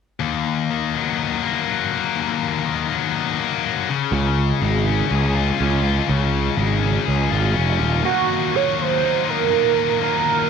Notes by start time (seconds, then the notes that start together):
0.20 D#2
0.71 D#3
0.94 F#3
1.17 D#4
1.42 A#3
1.67 F#3
1.92 A#3
2.16 D#2
2.65 D#3
2.89 F#3
3.14 D#4
3.39 A#3
3.65 F#3
3.89 C#3
4.12 C#2 C#3
4.61 G#1 G#3
4.86 C#4
5.11 C#2 G#4
5.35 F4
5.60 C#2 C#4
5.83 F4
6.07 C#2 C#3
6.57 G#1 G#3
6.82 C#4
7.05 C#2 G#4
7.30 G#1 F4
7.53 F1 C#4
7.79 D#1 F4
8.03 D#2 A#2 D#3 F#3 A#3 D#4 F#4
8.52 D#3 F#3 A#3 D#4 C#5
8.82 C5
9.02 D#3 F#3 A#3 D#4
9.25 D#3 F#3 A#3 D#4
9.30 A#4
9.49 D#2 A#2 D#3 F#3 A#3 D#4
9.75 D#3 F#3 A#3 D#4
10.00 D#2 A#2 D#3 F#3 A#3 D#4 A#4